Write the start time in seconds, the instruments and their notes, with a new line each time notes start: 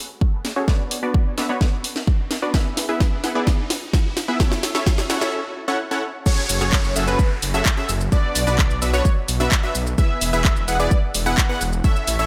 Already playing: riser
0.21 kick
0.45 snare, open hi-hat
0.56 supersaw synth C#4 F#4 G#4 A4 C#5
0.68 supersaw synth B3 D4 F#4 B4 D5, kick, snare
0.91 open hi-hat
1.03 supersaw synth B3 D4 F#4 B4 D5
1.14 kick
1.38 supersaw synth B3 D4 F#4 B4 E5, snare, open hi-hat
1.49 supersaw synth B3 D4 F#4 B4 C#5
1.61 kick, snare
1.84 open hi-hat
1.96 snare
2.07 kick
2.31 snare, open hi-hat
2.42 supersaw synth B3 D4 F#4 B4 D5
2.54 supersaw synth B3 E4 G#4 B4 E5, kick, snare
2.77 snare, open hi-hat
2.89 supersaw synth B3 E4 G#4 B4 E5
3.00 kick, snare
3.24 supersaw synth B3 E4 G#4 B4 F#5, snare, open hi-hat
3.35 supersaw synth B3 E4 G#4 B4 D5
3.47 kick, snare
3.70 snare, open hi-hat
3.93 kick, snare
4.17 snare, open hi-hat
4.28 supersaw synth B3 E4 G#4 B4 E5
4.40 supersaw synth C#4 E4 A4 C#5 E5, kick, snare
4.52 snare
4.63 snare, open hi-hat
4.75 supersaw synth C#4 E4 A4 C#5 E5, snare
4.86 kick, snare
4.98 snare
5.10 supersaw synth C#4 E4 A4 C#5 F#5, snare, open hi-hat
5.21 supersaw synth C#4 E4 A4 C#5 E5, snare
5.68 supersaw synth C#4 E4 A4 C#5 F#5
5.91 supersaw synth C#4 E4 A4 C#5 F#5
6.26 supersaw synth C#4 F#4 G#4 A4 C#5, analog synth lead C#5, kick, crash, downlifter, shaker
6.49 detuned saw bass F#1, open hi-hat, shaker
6.61 detuned saw bass F#1, supersaw synth C#4 F#4 G#4 A4 C#5, analog synth lead C#5, shaker
6.73 kick, clap, shaker
6.84 detuned saw bass F#1, shaker
6.96 detuned saw bass F#1, supersaw synth C#4 F#4 G#4 A4 E5, analog synth lead E5, open hi-hat, shaker
7.08 supersaw synth C#4 F#4 G#4 A4 B4, analog synth lead B4, shaker
7.19 kick, shaker
7.42 detuned saw bass F#1, open hi-hat, shaker
7.54 supersaw synth C#4 F#4 G#4 A4 E5, analog synth lead E5, shaker
7.66 kick, clap, shaker
7.77 supersaw synth C#4 F#4 G#4 A4 E5, analog synth lead E5
7.89 detuned saw bass F#1, open hi-hat, shaker
8.01 shaker
8.12 supersaw synth B3 D4 F#4 B4 D5, analog synth lead D5, kick, shaker
8.35 detuned saw bass B1, open hi-hat, shaker
8.47 detuned saw bass B1, supersaw synth B3 D4 F#4 B4 D5, analog synth lead D5, shaker
8.59 kick, clap, shaker
8.70 detuned saw bass B1, shaker
8.82 detuned saw bass B1, supersaw synth B3 D4 F#4 B4 E5, analog synth lead E5, open hi-hat, shaker
8.93 supersaw synth B3 D4 F#4 B4 C#5, analog synth lead C#5, shaker
9.05 kick, shaker
9.28 detuned saw bass B1, open hi-hat, shaker
9.40 supersaw synth B3 D4 F#4 B4 E5, analog synth lead E5, shaker
9.52 kick, clap, shaker
9.63 supersaw synth B3 D4 F#4 B4 E5, analog synth lead E5
9.75 detuned saw bass B1, open hi-hat, shaker
9.87 shaker
9.98 supersaw synth B3 E4 G#4 B4 E5, analog synth lead E5, kick, shaker
10.21 detuned saw bass E1, open hi-hat, shaker
10.33 detuned saw bass E1, supersaw synth B3 E4 G#4 B4 E5, analog synth lead E5, shaker
10.45 kick, clap, shaker
10.56 detuned saw bass E1, shaker
10.68 detuned saw bass E1, supersaw synth B3 E4 G#4 B4 F#5, analog synth lead F#5, open hi-hat, shaker
10.80 supersaw synth B3 E4 G#4 B4 D5, analog synth lead D5, shaker
10.91 kick, shaker
11.14 detuned saw bass E1, open hi-hat, shaker
11.26 supersaw synth B3 E4 G#4 B4 F#5, analog synth lead F#5, shaker
11.38 kick, clap, shaker
11.49 supersaw synth B3 E4 G#4 B4 F#5, analog synth lead F#5
11.61 detuned saw bass E1, open hi-hat, shaker
11.73 shaker
11.84 supersaw synth C#4 E4 A4 C#5 E5, analog synth lead E5, kick, shaker
11.96 shaker
12.07 detuned saw bass A1, open hi-hat, shaker
12.19 detuned saw bass A1, supersaw synth C#4 E4 A4 C#5 E5, analog synth lead E5, shaker